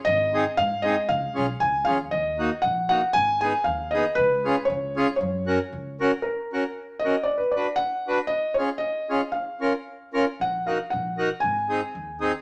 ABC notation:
X:1
M:2/4
L:1/16
Q:1/4=116
K:F#
V:1 name="Felt piano"
d4 e2 d2 | e4 g2 e2 | d4 f2 f2 | g2 g2 e2 d2 |
B4 c4 | c6 z2 | A6 d2 | =d B d2 f3 z |
d2 c2 d4 | e6 z2 | f2 e2 f4 | g6 z2 |]
V:2 name="Accordion"
z2 [^B,DG]2 z2 [B,DG]2 | z2 [CEG]2 z2 [CEG]2 | z2 [A,DF]2 z2 [A,DF]2 | z2 [B,DG]2 z2 [B,DG]2 |
z2 [CEG]2 z2 [CEG]2 | z2 [CFA]2 z2 [CFA]2 | z2 [CFA]2 z2 [CFA]2 | z2 [=DFB]2 z2 [DFB]2 |
z2 [CEG]2 z2 [CEG]2 | z2 [CEA]2 z2 [CEA]2 | z2 [DFA]2 z2 [DFA]2 | z2 [^B,DG]2 z2 [B,DG]2 |]
V:3 name="Upright bass" clef=bass
G,,,4 G,,4 | C,,2 B,,,2 C,,2 D,,2 | D,,4 A,,,4 | G,,,4 D,,4 |
C,,4 C,,4 | F,,4 C,,4 | z8 | z8 |
z8 | z8 | A,,,4 A,,,4 | G,,,4 D,,4 |]